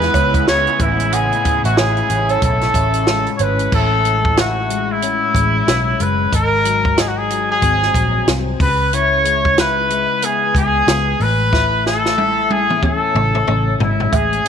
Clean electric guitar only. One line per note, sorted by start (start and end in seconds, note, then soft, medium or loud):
0.00 0.87 C#3 medium
0.00 0.46 G#3 medium
0.00 0.14 B3 medium
0.00 1.77 E4 medium
0.15 0.87 B3 medium
0.47 1.14 G#3 medium
0.79 1.10 A2 medium
1.11 3.71 A2 medium
1.44 1.64 B3 medium
1.64 2.09 C#4 soft
1.77 3.73 E4 medium
2.10 2.75 C#4 medium
2.75 3.40 C#4 medium
3.08 4.70 G#3 medium
3.40 5.02 C#4 medium
3.73 6.32 A2 medium
3.73 4.37 E4 medium
4.38 6.32 E4 medium
4.70 5.34 G#3 medium
5.03 5.66 C#4 medium
5.35 5.99 G#3 medium
5.67 6.40 C#4 medium
6.00 6.64 G#3 medium
6.32 8.68 G#2 medium
6.32 6.96 D#4 medium
6.64 7.29 F#3 medium
6.97 8.68 D#4 medium
7.30 7.95 F#3 medium
7.63 8.26 C4 medium
7.96 8.68 F#3 medium
8.28 8.68 C4 medium
8.60 8.92 C#3 medium
8.93 11.28 C#3 medium
8.93 9.58 E4 medium
9.25 9.90 G#3 medium
9.58 11.52 E4 medium
9.90 10.54 G#3 medium
10.23 10.87 B3 medium
10.55 11.55 G#3 medium
10.88 11.28 B3 medium
11.19 11.51 A2 medium
11.52 14.11 A2 medium
11.52 12.17 E4 medium
12.18 14.48 E4 medium
12.82 13.47 C#4 medium
13.47 14.45 C#4 medium
13.80 14.48 G#3 medium
14.12 14.48 A2 medium
14.45 14.48 C#4 medium